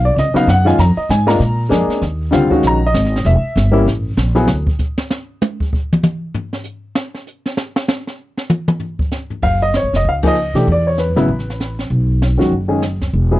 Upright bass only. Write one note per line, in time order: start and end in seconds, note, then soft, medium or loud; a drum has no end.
0.00 0.15 B1 medium
0.16 0.33 C#2 medium
0.34 muted upright bass stroke soft
0.47 0.77 F#2 medium
0.78 0.95 F2 medium
0.97 muted upright bass stroke soft
1.09 1.39 G#2 medium
1.40 1.69 A#2 medium
1.71 1.87 F2 medium
1.87 muted upright bass stroke soft
2.02 2.31 D#2 medium
2.32 2.49 C#2 medium
2.51 muted upright bass stroke soft
2.63 2.93 A#1 medium
2.94 3.24 G#1 medium
3.25 3.42 E1 medium
3.42 muted upright bass stroke soft
3.56 3.85 G1 loud
3.86 4.16 A1 medium
4.17 4.47 A#1 medium
4.48 4.66 D2 medium
9.42 9.81 F#1 medium
9.82 9.92 G#1 medium
9.93 10.03 F1 medium
10.05 10.51 C#2 medium
10.53 10.65 B2 medium
10.67 11.13 E2 medium
11.16 11.27 G#1 medium
11.28 11.87 A1 medium
11.90 12.36 B1 medium
12.39 12.50 F#2 medium
12.52 13.10 F#1 medium
13.13 13.40 E1 medium